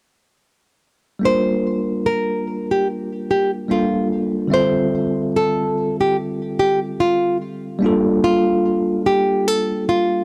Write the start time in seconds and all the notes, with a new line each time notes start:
1.19 G3 A#3 D4
1.25 F4 A#4 C5
2.06 A#4
2.71 G4
3.31 G4
3.69 G3 A#3 D4 F4 A4
4.48 D3 G3 C4
4.52 F4 A4 C5 E5
5.36 A4
6.01 G4
6.59 G4
7.00 F4
7.79 G3 A#3 D4
7.84 F4 A4
8.24 F4
9.06 G4
9.48 A4
9.89 F4